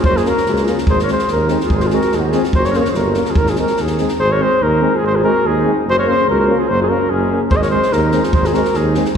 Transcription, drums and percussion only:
0.04 kick
0.17 snare
0.25 snare
0.37 snare
0.46 snare
0.56 snare
0.67 snare
0.78 snare
0.87 kick
0.99 snare
1.08 snare
1.19 snare
1.28 snare
1.48 snare
1.60 snare
1.70 kick
1.80 snare
1.90 snare
2.01 snare
2.12 snare
2.32 snare
2.44 snare
2.53 kick
2.64 snare
2.73 snare
2.85 snare
2.94 snare
3.14 snare
3.25 snare
3.35 kick
3.46 snare
3.56 snare
3.67 snare
3.77 snare
3.87 snare
3.98 snare
4.08 snare
7.51 kick
7.62 snare
7.82 snare
7.92 snare
8.12 snare
8.23 snare
8.33 kick
8.44 snare
8.54 snare
8.65 snare
8.74 snare
8.94 snare
9.05 snare

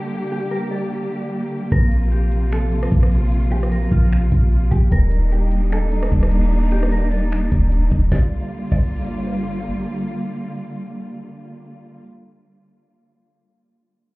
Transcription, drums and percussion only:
1.72 kick, closed hi-hat
1.92 closed hi-hat
2.12 closed hi-hat
2.32 closed hi-hat
2.52 finger snap, closed hi-hat
2.72 closed hi-hat
2.83 cross-stick
2.92 kick, closed hi-hat
3.03 cross-stick
3.12 closed hi-hat
3.32 closed hi-hat
3.52 closed hi-hat
3.63 cross-stick
3.72 closed hi-hat
3.92 kick, closed hi-hat
4.12 finger snap, closed hi-hat
4.32 kick, closed hi-hat
4.52 closed hi-hat
4.72 kick, closed hi-hat
4.92 kick, closed hi-hat
5.11 closed hi-hat
5.32 closed hi-hat
5.52 closed hi-hat
5.72 finger snap, closed hi-hat
5.92 closed hi-hat
6.03 cross-stick
6.12 kick, closed hi-hat
6.23 cross-stick
6.31 closed hi-hat
6.52 closed hi-hat
6.71 closed hi-hat
6.83 cross-stick
6.92 closed hi-hat
7.12 closed hi-hat
7.32 finger snap, closed hi-hat
7.52 kick, closed hi-hat
7.72 closed hi-hat
7.91 kick, closed hi-hat
8.12 kick, snare
8.72 kick, crash

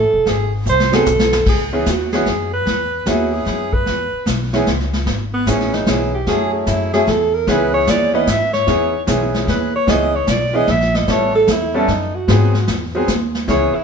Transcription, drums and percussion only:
0.26 brush sweep, kick, snare
0.66 hi-hat pedal
0.80 snare
0.93 snare
1.06 hi-hat pedal, mid tom
1.19 snare
1.33 snare
1.46 brush sweep, kick, snare, crash
1.86 kick, snare, hi-hat pedal
2.12 snare
2.26 kick, snare
2.66 brush sweep, kick, snare
3.06 kick, snare, hi-hat pedal
3.46 kick, snare
3.73 kick
3.86 brush sweep, kick, snare
4.26 kick, snare, hi-hat pedal
4.53 snare
4.67 kick, snare
4.80 snare
4.93 snare
5.06 brush sweep, kick, snare
5.47 kick, snare, hi-hat pedal
5.60 snare
5.73 snare
5.86 kick, snare, hi-hat pedal
6.27 brush sweep, kick, snare
6.66 kick, snare, hi-hat pedal
6.93 snare
7.07 kick, snare
7.47 brush sweep, kick, snare
7.87 kick, snare, hi-hat pedal
8.27 kick, snare, hi-hat pedal
8.54 snare
8.67 brush sweep, kick, snare
9.07 kick, snare, hi-hat pedal
9.34 snare
9.47 kick, snare
9.87 brush sweep, kick, snare
10.27 kick, snare, hi-hat pedal
10.68 kick, snare
10.81 snare
10.95 snare
11.08 brush sweep, kick, snare
11.47 kick, snare, hi-hat pedal
11.88 kick, snare
12.28 brush sweep, kick, snare
12.54 snare
12.67 kick, snare, hi-hat pedal
13.08 kick, snare, hi-hat pedal
13.35 snare
13.48 brush sweep, kick, snare

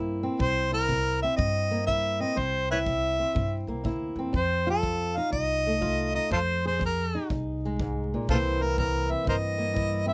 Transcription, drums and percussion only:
0.40 kick
0.89 kick
1.39 kick
1.88 kick
2.37 kick
2.86 kick
3.36 kick
3.85 kick
4.34 kick
4.83 kick
5.33 kick
5.82 kick
6.32 kick
6.81 kick
7.30 kick
7.80 kick
8.29 kick
8.78 kick
9.27 kick
9.76 kick

